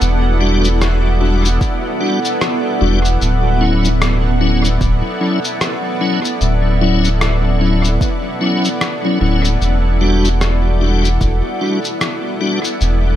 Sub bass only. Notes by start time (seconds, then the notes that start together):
0.01 E1
2.81 E1
3.21 D1
4.81 D1
6.41 D1
9.21 D1
9.61 E1
11.21 E1
12.81 E1